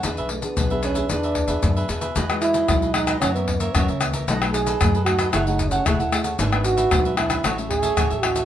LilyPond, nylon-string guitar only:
\new Staff \with { instrumentName = "Nylon-string guitar" } { \time 4/4 \key e \mixolydian \tempo 4 = 114 << { <b d' gis'>8. <b d' gis'>8 <b d' gis'>8 <b d' gis'>16 <b d' gis'>8. <b d' gis'>8. <b d' gis'>16 r16 | \key e \major <gis dis' fis'>16 <gis dis' fis'>8. <gis dis' fis'>8 <gis dis' fis'>8 <e ais cis'>16 <e ais cis'>8. <e ais cis'>16 r16 <e ais cis'>8 | <fis a dis'>16 <fis a dis'>8. <fis a dis'>16 r16 <fis a dis'>8 <a e' gis'>16 <a e' gis'>8. <a e' gis'>16 r16 <a e' gis'>8 | <e b d'>16 <e b d'>8. <e b d'>8 <e b d'>8 <fis cis' e'>16 <fis cis' e'>8. <fis cis' e'>8 <fis cis' e'>16 r16 | } \\ { e4 b,4 e4 b,4 | e4 b,4 fis,4 cis4 | b,4 fis,4 fis4 cis4 | gis,4 gis,4 a,4 e4 | } >> }